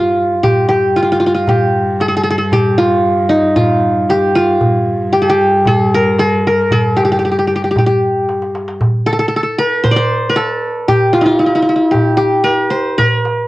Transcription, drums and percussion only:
0.04 darbuka ka soft
0.43 darbuka dum medium
0.70 darbuka tek medium
0.96 darbuka ka soft
1.22 darbuka ka soft
1.47 darbuka dum medium
1.62 darbuka ka soft
2.00 darbuka tek medium
2.52 darbuka dum medium
2.78 darbuka tek medium
3.05 darbuka ka soft
3.31 darbuka ka soft
3.43 darbuka ka soft
3.56 darbuka dum medium
3.70 darbuka ka soft
4.09 darbuka tek medium
4.61 darbuka dum medium
5.14 darbuka ka soft
5.53 darbuka ka soft
5.65 darbuka dum medium
6.19 darbuka tek medium
6.71 darbuka dum medium
6.98 darbuka tek medium
7.24 darbuka ka soft
7.76 darbuka dum medium
8.03 darbuka ka soft
8.29 darbuka tek medium
8.42 darbuka ka medium
8.55 darbuka tek medium
8.68 darbuka ka medium
8.81 darbuka dum loud
9.07 darbuka tek medium
9.59 darbuka ka soft
9.84 darbuka dum medium
10.37 darbuka tek medium
10.88 darbuka dum medium
11.15 darbuka tek medium
11.68 darbuka ka soft
11.94 darbuka dum medium
12.47 darbuka tek medium
12.99 darbuka dum medium
13.25 darbuka tek medium

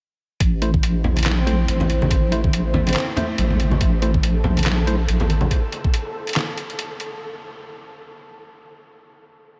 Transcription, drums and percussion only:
0.40 kick loud
0.40 closed hi-hat medium
0.62 closed hi-hat medium
0.74 kick loud
0.83 closed hi-hat medium
1.04 low conga medium
1.16 closed hi-hat medium
1.16 high conga medium
1.19 closed hi-hat medium
1.23 snare loud
1.23 clap loud
1.23 closed hi-hat medium
1.26 closed hi-hat medium
1.37 muted conga soft
1.47 closed hi-hat medium
1.68 closed hi-hat medium
1.80 muted conga medium
1.80 low conga medium
1.90 closed hi-hat medium
2.02 high conga medium
2.11 kick loud
2.11 closed hi-hat medium
2.32 closed hi-hat medium
2.44 kick loud
2.53 closed hi-hat medium
2.74 low conga loud
2.87 closed hi-hat soft
2.87 high conga medium
2.89 closed hi-hat medium
2.93 snare loud
2.93 clap loud
2.93 closed hi-hat medium
2.96 closed hi-hat medium
3.16 closed hi-hat medium
3.16 low conga medium
3.38 closed hi-hat medium
3.50 low conga medium
3.60 closed hi-hat medium
3.71 high conga loud
3.81 kick loud
3.81 closed hi-hat medium
4.02 closed hi-hat medium
4.14 kick loud
4.23 closed hi-hat medium
4.44 low conga loud
4.57 closed hi-hat soft
4.57 high conga medium
4.59 closed hi-hat medium
4.63 snare loud
4.63 clap medium
4.63 closed hi-hat medium
4.66 closed hi-hat medium
4.77 muted conga soft
4.87 closed hi-hat medium
5.08 closed hi-hat medium
5.20 muted conga medium
5.20 low conga medium
5.30 closed hi-hat medium
5.41 high conga loud
5.51 kick loud
5.51 closed hi-hat medium
5.72 closed hi-hat soft
5.84 kick loud
5.94 closed hi-hat medium
6.27 closed hi-hat soft
6.29 closed hi-hat medium
6.33 snare loud
6.33 clap medium
6.33 closed hi-hat medium
6.36 closed hi-hat medium
6.58 closed hi-hat medium
6.70 closed hi-hat soft
6.79 closed hi-hat medium
7.00 closed hi-hat soft

